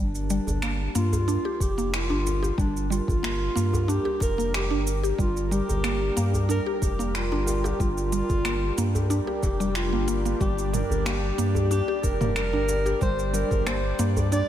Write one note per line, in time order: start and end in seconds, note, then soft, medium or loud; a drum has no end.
0.00 0.40 G1 medium
0.00 0.28 G3 medium
0.00 14.48 G3 medium
0.00 0.92 D4 medium
0.00 14.48 D4 medium
0.00 14.48 G4 medium
0.00 10.40 A#4 medium
0.15 shaker soft
0.30 0.61 G3 medium
0.30 shaker medium
0.47 0.88 G1 medium
0.47 djembe bass medium
0.47 shaker soft
0.62 0.79 A#3 medium
0.62 finger snap medium
0.62 shaker soft
0.95 1.38 G2 medium
0.95 1.12 A#3 medium
0.95 1.63 F4 medium
0.95 shaker medium
1.13 djembe bass medium
1.13 shaker soft
1.28 1.43 D4 medium
1.28 shaker soft
1.45 1.60 G4 medium
1.60 2.12 F1 medium
1.60 1.94 G4 medium
1.60 kick medium
1.60 djembe tone medium
1.60 shaker medium
1.78 2.09 A#3 medium
1.78 shaker soft
1.94 2.55 F4 medium
1.94 finger snap loud
1.94 shaker soft
2.10 2.52 G1 medium
2.10 2.25 D4 medium
2.10 djembe slap soft
2.27 djembe tone medium
2.27 shaker medium
2.43 2.57 G4 medium
2.43 djembe tone medium
2.43 shaker soft
2.58 3.01 G1 medium
2.58 2.89 G3 medium
2.58 2.89 D4 medium
2.58 kick loud
2.58 shaker soft
2.77 shaker soft
2.90 3.22 G3 medium
2.90 3.92 F4 loud
2.90 shaker medium
3.08 3.49 G1 loud
3.08 kick loud
3.08 djembe bass medium
3.08 shaker soft
3.23 3.40 A#3 medium
3.23 finger snap loud
3.23 shaker soft
3.56 3.99 G2 medium
3.56 3.72 A#3 medium
3.56 shaker medium
3.73 djembe slap soft
3.73 djembe tone medium
3.73 djembe bass loud
3.73 shaker soft
3.88 4.04 D4 medium
3.88 4.22 G4 medium
3.88 shaker soft
4.05 4.20 G4 medium
4.05 djembe tone medium
4.20 4.73 F1 medium
4.20 4.52 A#4 medium
4.20 kick loud
4.20 djembe slap medium
4.20 shaker medium
4.37 4.69 A#3 medium
4.37 djembe slap soft
4.37 shaker soft
4.54 4.90 G4 medium
4.54 finger snap medium
4.54 shaker soft
4.71 5.13 G1 medium
4.71 4.85 D4 medium
4.87 shaker medium
5.03 5.17 G4 medium
5.03 shaker soft
5.18 5.61 G1 loud
5.18 5.50 G3 medium
5.18 5.54 F4 medium
5.18 kick loud
5.18 shaker soft
5.37 shaker soft
5.51 5.83 G3 medium
5.51 6.49 G4 loud
5.51 shaker medium
5.69 6.10 G1 medium
5.69 djembe bass medium
5.69 shaker soft
5.84 6.01 A#3 medium
5.84 finger snap medium
5.84 shaker soft
6.17 6.59 G2 medium
6.17 6.33 A#3 loud
6.17 shaker medium
6.34 djembe bass medium
6.34 shaker soft
6.49 6.65 D4 medium
6.49 6.65 A#4 loud
6.49 shaker soft
6.66 6.81 G4 medium
6.82 7.34 F1 medium
6.82 7.17 G4 medium
6.82 kick medium
6.82 djembe tone medium
6.82 shaker medium
6.99 7.30 A#3 medium
6.99 shaker soft
7.15 7.67 F4 loud
7.15 finger snap loud
7.15 shaker soft
7.32 7.73 G1 medium
7.32 7.47 D4 medium
7.32 djembe slap soft
7.46 djembe tone medium
7.46 shaker medium
7.64 7.78 G4 medium
7.64 7.80 G4 medium
7.64 djembe tone medium
7.64 shaker soft
7.80 8.22 G1 loud
7.80 8.11 G3 medium
7.80 9.13 F4 loud
7.80 kick loud
7.80 shaker soft
7.98 shaker soft
8.12 8.44 G3 medium
8.12 shaker medium
8.30 8.71 G1 loud
8.30 kick loud
8.30 djembe bass medium
8.30 shaker soft
8.45 8.62 A#3 medium
8.45 finger snap medium
8.45 shaker soft
8.78 9.20 G2 medium
8.78 8.94 A#3 loud
8.78 shaker medium
8.95 djembe slap soft
8.95 djembe tone medium
8.95 djembe bass medium
8.95 shaker soft
9.10 9.26 D4 medium
9.10 shaker soft
9.27 9.42 G4 medium
9.27 djembe tone medium
9.36 9.45 A#4 medium
9.43 9.95 F1 medium
9.43 9.75 G4 medium
9.43 kick loud
9.43 djembe slap medium
9.43 shaker medium
9.60 9.75 G3 loud
9.60 djembe slap soft
9.60 shaker soft
9.75 10.37 F4 medium
9.75 finger snap medium
9.75 shaker soft
9.93 10.34 G1 medium
9.93 10.07 A#3 medium
10.08 10.24 A#3 medium
10.08 shaker medium
10.25 10.39 A#3 medium
10.25 shaker soft
10.40 10.83 G1 loud
10.40 10.72 G3 medium
10.40 10.75 G4 medium
10.40 14.48 D5 medium
10.40 kick loud
10.40 shaker soft
10.58 shaker soft
10.73 11.05 G3 medium
10.73 11.06 A#4 medium
10.73 mid tom medium
10.73 shaker medium
10.90 11.32 G1 medium
10.90 djembe bass medium
10.90 shaker soft
11.06 11.22 A#3 medium
11.06 11.67 G4 loud
11.06 finger snap loud
11.06 shaker soft
11.38 11.81 G2 medium
11.38 11.55 A#3 medium
11.38 shaker medium
11.55 djembe bass medium
11.55 shaker soft
11.71 11.87 D4 medium
11.71 12.04 G4 loud
11.71 shaker soft
11.88 12.03 G4 medium
12.03 12.55 F1 loud
12.03 12.36 A#4 medium
12.03 kick loud
12.03 djembe tone medium
12.03 shaker medium
12.21 12.52 A#3 medium
12.21 mid tom medium
12.21 shaker soft
12.36 12.98 A#4 loud
12.36 finger snap medium
12.36 shaker soft
12.52 12.95 G1 medium
12.52 12.68 D4 medium
12.52 djembe slap soft
12.69 djembe tone medium
12.69 shaker medium
12.86 13.00 G4 medium
12.86 djembe tone medium
12.86 shaker soft
13.01 13.44 G1 medium
13.01 13.32 G3 medium
13.01 13.36 C5 loud
13.01 kick loud
13.01 shaker soft
13.19 shaker soft
13.34 13.65 G3 medium
13.34 13.68 A#4 medium
13.34 shaker medium
13.51 13.93 G1 loud
13.51 kick loud
13.51 djembe bass medium
13.51 shaker soft
13.66 13.83 A#3 medium
13.66 14.05 C5 loud
13.66 finger snap medium
13.66 shaker soft
13.99 14.42 G2 medium
13.99 14.16 A#3 medium
13.99 shaker medium
14.17 djembe slap soft
14.17 djembe tone medium
14.17 djembe bass loud
14.17 shaker soft
14.32 14.48 D4 medium
14.32 14.48 D5 loud
14.32 shaker soft